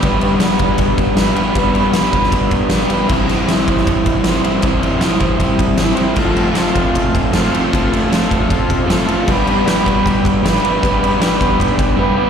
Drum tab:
CC |----------------|----------------|x---------------|----------------|
RD |x-x-x-x-x-x-x-x-|x-x-x-x-x-x-x-x-|--x-x-x-x-x-x-x-|x-x-x-x-x-x-x-x-|
SD |----o-------o---|----o--o----o---|--o-o--o----o---|----o-------o---|
BD |o-----o-o-o-----|o-----o-o-o-----|o-----o-o-o-----|o-----o-o-o-----|

CC |x---------------|----------------|x---------------|----------------|
RD |--x-x-x-x-x-x-x-|x-x-x-x-x-x-x-x-|--x-x-x-x-x-x-x-|x-x-x-x-x-x-----|
SD |----o-------o---|----o-------o---|----o-------o---|----o-----------|
BD |o-----o-o-o-----|o-----o-o-o-----|o-----o-o-o-----|o-----o-o-o-----|